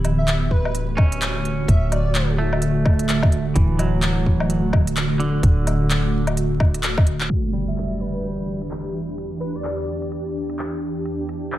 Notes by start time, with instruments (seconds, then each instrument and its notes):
Already playing: 808-style bass D1, ambient pad D3 A3 F#4
0.05 closed hi-hat, low woodblock
0.18 digital synth lead E5
0.28 clap, closed hi-hat
0.51 digital synth lead B4, kick
0.65 low woodblock
0.75 closed hi-hat
0.97 clean electric guitar C#4, kick, low woodblock
1.12 closed hi-hat
1.22 clap, closed hi-hat
1.45 closed hi-hat
1.67 808-style bass D1, digital synth lead E5, kick, closed hi-hat
1.91 digital synth lead D5, closed hi-hat, low woodblock
2.15 clap, closed hi-hat
2.38 clean electric guitar A3
2.53 low woodblock
2.62 closed hi-hat
2.85 kick, low woodblock
2.99 closed hi-hat
3.09 clap, closed hi-hat
3.23 kick, low woodblock
3.32 closed hi-hat
3.56 808-style bass D1, clean electric guitar E3, kick, closed hi-hat
3.79 clean electric guitar F#3, closed hi-hat, low woodblock
4.03 clap, closed hi-hat
4.26 kick
4.40 low woodblock
4.50 closed hi-hat
4.73 kick, low woodblock
4.87 closed hi-hat
4.97 clap, closed hi-hat
5.20 clean electric guitar D3, closed hi-hat
5.43 808-style bass D1, kick, closed hi-hat
5.67 closed hi-hat, low woodblock
5.91 clap, closed hi-hat
6.27 closed hi-hat, low woodblock
6.37 closed hi-hat
6.60 kick, low woodblock
6.74 closed hi-hat
6.83 clap, closed hi-hat
6.98 kick, low woodblock
7.07 closed hi-hat
7.21 clap
7.29 ambient pad E2 E3 D4 G4, closed hi-hat, impact
7.53 clean electric guitar G3, closed hi-hat
7.68 digital synth lead E5
7.78 clap, closed hi-hat
8.00 digital synth lead B4
8.15 closed hi-hat
8.24 closed hi-hat
8.62 closed hi-hat
8.71 clap, closed hi-hat
9.18 closed hi-hat
9.40 digital synth lead B4, closed hi-hat
9.55 digital synth lead D5
9.64 clap, closed hi-hat
10.02 closed hi-hat
10.12 closed hi-hat
10.49 closed hi-hat
10.59 clap, closed hi-hat
11.05 closed hi-hat
11.29 closed hi-hat
11.52 clap, closed hi-hat